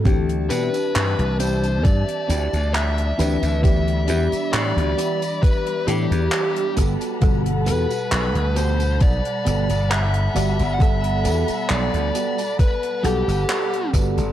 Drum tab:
HH |xxxxxxxxxxxxxxxx|xxxxxxxxxxxxxxxx|xxxxxxxxxxxxxxxx|xxxxxxxxxxxxxxxx|
TB |x-xxx-xxx-xxx-xx|x-xxx-xxx-xxx-xx|x-xxx-xxx-xxx-xx|x-xxx-xxx-xxx-xx|
CP |----x-------x---|----x-------x---|----x-------x---|----x-------x---|
BD |o-------o-------|o-------o-----o-|o-------o-------|o-------o-----o-|